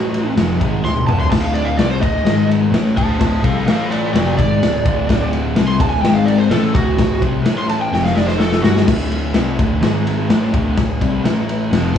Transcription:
Already playing: picked electric bass A1, distorted electric guitar A2 E3 A3, electric slide guitar F#4
0.14 ride
0.36 picked electric bass F1, distorted electric guitar F2 C3 F3, snare, ride
0.60 picked electric bass G#1, distorted electric guitar G#2 D#3 G#3, kick, ride
0.83 picked electric bass D1, distorted electric guitar D2 A2, electric slide guitar C6, snare
0.97 high tom
1.06 picked electric bass D1, distorted electric guitar D2 A2 D3, electric slide guitar A5, mid tom
1.20 electric slide guitar C6, floor tom
1.30 picked electric bass D1, distorted electric guitar D2 A2 D3, electric slide guitar A5, kick, snare, crash
1.40 electric slide guitar F5
1.54 electric slide guitar D5, ride
1.65 electric slide guitar F5
1.77 picked electric bass C2, distorted electric guitar C3 G3 C4, electric slide guitar D5, snare, ride
1.91 electric slide guitar C5
2.01 picked electric bass D1, distorted electric guitar D2 A2 D3, electric slide guitar D#5, kick, ride
2.24 picked electric bass G#1, distorted electric guitar G#2 D#3 G#3, snare, ride
2.51 ride
2.71 picked electric bass A1, distorted electric guitar A2 E3 A3, snare, ride
2.95 picked electric bass D1, distorted electric guitar D2 A2 D3, electric slide guitar C5 A5, kick, ride
3.19 picked electric bass D1, distorted electric guitar D2 A2, electric slide guitar C5 A5, kick, snare, ride
3.43 picked electric bass C2, distorted electric guitar C3 G3 C4, electric slide guitar A4 F5, kick, ride
3.66 picked electric bass A1, distorted electric guitar A2 E3 A3, electric slide guitar A4 F5, snare, ride
3.89 electric slide guitar F4 D5, ride
4.13 picked electric bass F1, distorted electric guitar F2 C3 F3, electric slide guitar F#4 D5, snare, ride
4.37 picked electric bass G#1, distorted electric guitar G#2 D#3 G#3, electric slide guitar D5, kick, ride
4.61 picked electric bass D1, distorted electric guitar D2 A2, snare, ride
4.85 picked electric bass D1, distorted electric guitar D2 A2 D3, kick, ride
5.09 picked electric bass D1, distorted electric guitar D2 A2 D3, kick, snare, ride
5.33 ride
5.56 picked electric bass C2, distorted electric guitar C3 G3 C4, snare, ride
5.68 electric slide guitar C6
5.79 picked electric bass D1, distorted electric guitar D2 A2 D3, electric slide guitar A5, kick, ride
5.89 electric slide guitar G#5
6.01 picked electric bass G#1, distorted electric guitar G#2 D#3 G#3, electric slide guitar G5, snare, ride
6.15 electric slide guitar F5
6.25 electric slide guitar D5, ride
6.38 electric slide guitar C5
6.49 picked electric bass A1, distorted electric guitar A2 E3 A3, electric slide guitar A4, snare, ride
6.73 picked electric bass D1, distorted electric guitar D2 A2 D3, electric slide guitar F#4, kick, ride
6.97 picked electric bass D1, distorted electric guitar D2 A2, kick, snare, ride
7.21 picked electric bass C2, distorted electric guitar C3 G3 C4, kick, ride
7.44 picked electric bass A1, distorted electric guitar A2 E3 A3, snare, ride
7.58 electric slide guitar C6
7.69 electric slide guitar A5, ride
7.81 electric slide guitar G5
7.91 picked electric bass F1, distorted electric guitar F2 C3 F3, electric slide guitar G5, snare
8.05 electric slide guitar F5, snare
8.15 electric slide guitar D5, snare
8.27 electric slide guitar C5, snare
8.38 electric slide guitar A4, snare
8.52 snare
8.62 picked electric bass G1, distorted electric guitar G2 D3 G3, electric slide guitar F#4, snare
8.77 snare
8.87 picked electric bass D1, distorted electric guitar D2 A2 D3, kick, snare, crash
9.11 ride
9.34 picked electric bass C2, distorted electric guitar C3 G3 C4, snare, ride
9.58 picked electric bass D1, distorted electric guitar D2 A2 D3, kick, ride
9.81 picked electric bass G#1, distorted electric guitar G#2 D#3 G#3, snare, ride
10.07 ride
10.29 picked electric bass A1, distorted electric guitar A2 E3 A3, snare, ride
10.53 picked electric bass D1, distorted electric guitar D2 A2 D3, kick, ride
10.77 picked electric bass D1, distorted electric guitar D2 A2, kick, snare, ride
11.01 picked electric bass C2, distorted electric guitar C3 G3 C4, kick, ride
11.24 picked electric bass A1, distorted electric guitar A2 E3 A3, snare, ride
11.49 ride
11.71 picked electric bass F1, distorted electric guitar F2 C3 F3, snare, ride
11.95 distorted electric guitar G#2

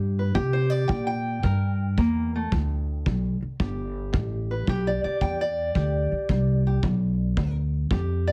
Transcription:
Already playing: upright bass G2, steel-string acoustic guitar G3 G4
0.19 steel-string acoustic guitar B4
0.35 upright bass C3, steel-string acoustic guitar C4 G4, kick
0.53 steel-string acoustic guitar C5
0.70 steel-string acoustic guitar D5
0.88 upright bass A#2, steel-string acoustic guitar E4 G5, kick
1.07 steel-string acoustic guitar G5
1.43 steel-string acoustic guitar G2 A#4, upright bass G2, kick
1.98 upright bass E2, steel-string acoustic guitar A#3, kick
2.36 steel-string acoustic guitar A3
2.52 upright bass D2, steel-string acoustic guitar G2, kick
3.06 upright bass B1, steel-string acoustic guitar G3, kick
3.42 muted upright bass stroke
3.60 upright bass G1, steel-string acoustic guitar D3 G4, kick
4.13 upright bass A1, steel-string acoustic guitar G3, kick
4.51 steel-string acoustic guitar B4
4.67 upright bass B1, steel-string acoustic guitar G2 G4, kick
4.87 steel-string acoustic guitar D5
5.04 steel-string acoustic guitar D5, muted upright bass stroke
5.21 upright bass E2, steel-string acoustic guitar G3 G5, kick
5.41 steel-string acoustic guitar D5
5.75 upright bass D2, steel-string acoustic guitar D3 G4, kick
6.12 muted upright bass stroke
6.29 upright bass C2, steel-string acoustic guitar G3, kick
6.67 steel-string acoustic guitar G4
6.83 upright bass B1, steel-string acoustic guitar G2, kick
7.37 upright bass D2, steel-string acoustic guitar G3, kick
7.91 upright bass F2, steel-string acoustic guitar D3 G4, kick
8.27 steel-string acoustic guitar D5

